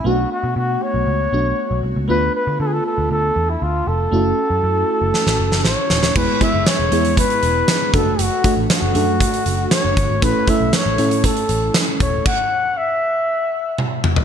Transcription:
<<
  \new Staff \with { instrumentName = "Flugelhorn" } { \time 4/4 \key a \major \tempo 4 = 118 fis'8 fis'8 fis'8 cis''2 r8 | b'8 b'8 a'32 gis'32 a'16 a'8 a'8. e'16 f'8 a'8~ | a'2. cis''4 | b'8 e''8 cis''4 b'4. a'8 |
fis'4 fis'2 cis''4 | b'8 e''8 cis''4 a'4 r8 cis''8 | fis''4 e''2 r4 | }
  \new Staff \with { instrumentName = "FM electric piano" } { \time 4/4 \key a \major <a b d' fis'>2~ <a b d' fis'>8 <a b d' fis'>4. | <a b d' f'>1 | <a cis' e' fis'>1 | <gis b e' gis'>8 <gis b e' gis'>4 <gis b e' gis'>2 <a d' fis' a'>8~ |
<a d' fis' a'>8 <a d' fis' a'>4 <a d' fis' a'>2 r8 | <a cis' e' a'>8 <a cis' e' a'>4 <a cis' e' a'>2 r8 | r1 | }
  \new Staff \with { instrumentName = "Picked electric bass" } { \clef bass \time 4/4 \key a \major b,,8 r16 b,16 b,8 r16 b,,16 cis,8 b,,8 r16 b,,16 c,16 cis,16 | d,8 r16 d16 d8 r16 d,16 d,8 e,8 d,8 f,,8 | fis,,8 r16 fis,16 fis,8 r16 fis,,16 r16 a,,16 fis,,16 fis,,16 a,,16 r16 dis,,8 | e,,16 r8 fis,,16 r16 e,,16 e,8. r16 e,,8 r8 fis,,8 |
fis,,16 r8 a,,16 r16 fis,,16 fis,8. r16 fis,,8 r16 fis,,16 g,,16 gis,,16 | a,,16 r8 b,,16 r16 a,,16 a,8. r16 a,,8 r8 dis,,8 | r1 | }
  \new DrumStaff \with { instrumentName = "Drums" } \drummode { \time 4/4 r4 r4 r4 r4 | r4 r4 r4 r4 | r4 r4 sn16 sn8 sn16 sn8 sn16 sn16 | <cymc bd>8 <hh bd>8 <hh sn>8 hh16 hh16 <hh bd>16 hh16 hh8 <hh sn>8 <hh bd>8 |
hh8 <hh bd>8 <hh sn>8 hh8 <hh bd>16 hh16 hh8 <hh sn>8 <hh bd>8 | <hh bd>8 <hh bd>8 <hh sn tamb>8 hh16 hh16 <hh bd>16 hh16 hh8 <hh sn tamb>8 <hh bd>8 | <cymc bd>4 r4 r4 tommh8 toml16 tomfh16 | }
>>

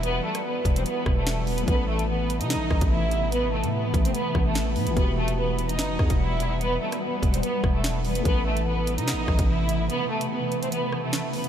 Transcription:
<<
  \new Staff \with { instrumentName = "Violin section" } { \time 4/4 \key a \dorian \tempo 4 = 146 <b b'>8 <a a'>8 <b b'>8. <c' c''>16 <b b'>8. <a a'>8. <b b'>8 | <b b'>8 <a a'>8 <b b'>8. <dis' dis''>4~ <dis' dis''>16 <e' e''>4 | <b b'>8 <a a'>8 <b b'>8. <c' c''>16 <b b'>8. <a a'>8. <b b'>8 | <b b'>8 <a a'>8 <b b'>8. <dis' dis''>4~ <dis' dis''>16 <e' e''>4 |
<b b'>8 <a a'>8 <b b'>8. <c' c''>16 <b b'>8. <a a'>8. <b b'>8 | <b b'>8 <a a'>8 <b b'>8. <dis' dis''>4~ <dis' dis''>16 <e' e''>4 | <b b'>8 <a a'>8 <b b'>8. <c' c''>16 <b b'>8. <a a'>8. <b b'>8 | }
  \new Staff \with { instrumentName = "Grand piano" } { \time 4/4 \key a \dorian <e b fis' g'>1 | <e a a' b'>1~ | <e a a' b'>1 | <e b fis' g'>1~ |
<e b fis' g'>1 | <e a a' b'>1~ | <e a a' b'>1 | }
  \new Staff \with { instrumentName = "Ambient pad" } { \clef bass \time 4/4 \key a \dorian << { <e g fis''>1 | <c e a>1~ | <c e a>1 | <e g fis''>1~ |
<e g fis''>1 | <c e a>1~ | <c e a>1 | } \\ { b1~ | b1~ | b1~ | b1~ |
b1 | b1~ | b1 | } >> }
  \new Staff \with { instrumentName = "808-style bass" } { \clef bass \time 4/4 \key a \dorian e,,8 r4 e,,8 r8 e,,4. | a,,4.~ a,,16 c16. a,,16. a,,16 a,,4~ a,,16~ | a,,8. a,8. a,,8 r8 a,,4 a,16 a,,16 | e,,2 g,,16 e,,16 e,16 e,,4~ e,,16~ |
e,,8 r4 e,,8 r8 e,,4. | a,,4.~ a,,16 c16. a,,16. a,,16 a,,4~ a,,16 | r1 | }
  \new DrumStaff \with { instrumentName = "Drums" } \drummode { \time 4/4 hh8. <hh ss>16 r8 <hh bd>16 hh16 hh8 <bd ss>8 sn8 hho16 hh16 | <hh bd>8. hh16 r8 hh16 hh16 <hh sn>8 <bd ss>16 <hh bd>16 r8 hh8 | hh8. hh16 r8 <hh bd>16 hh16 hh8 <bd ss>8 sn8 hho16 hh16 | <hh bd>8. hh16 r8 hh16 hh16 <hh sn>8 <bd ss>16 <hh bd>16 r8 hh8 |
hh8. <hh ss>16 r8 <hh bd>16 hh16 hh8 <bd ss>8 sn8 hho16 hh16 | <hh bd>8. hh16 r8 hh16 hh16 <hh sn>8 <bd ss>16 <hh bd>16 r8 hh8 | hh8. hh16 r8 hh16 hh16 hh8 ss8 sn8 hho16 hh16 | }
>>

